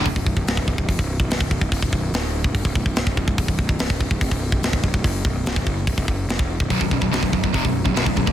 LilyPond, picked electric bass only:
\new Staff \with { instrumentName = "Picked electric bass" } { \clef bass \time 4/4 \key b \phrygian \tempo 4 = 144 b,,,16 b,,,16 b,,,16 b,,,16 c,,16 b,,,16 b,,,16 b,,,16 eis,,16 b,,,8 b,,,16 b,,,16 b,,,16 b,,,16 b,,,16 | c,,16 b,,,16 b,,,8 d,,8. b,,,16 g,,16 b,,,16 b,,,16 b,,,16 c,,16 b,,,16 b,,,16 b,,,16 | b,,,16 b,,,16 b,,,16 b,,,16 c,,16 b,,,16 b,,,16 b,,,16 eis,,16 b,,,8 b,,,16 b,,,16 b,,,16 b,,,16 b,,,16 | fis,,8 b,,,8 c,,16 b,,,16 fis,,8 b,,,16 c,,16 fis,,8 eis,,16 e,,8 b,,,16 |
b,,,16 b,,,16 b,,,16 b,,,16 c,,16 b,,,16 b,,,16 b,,,16 eis,,16 b,,,8 b,,,16 b,,,16 b,,,16 b,,,16 b,,,16 | }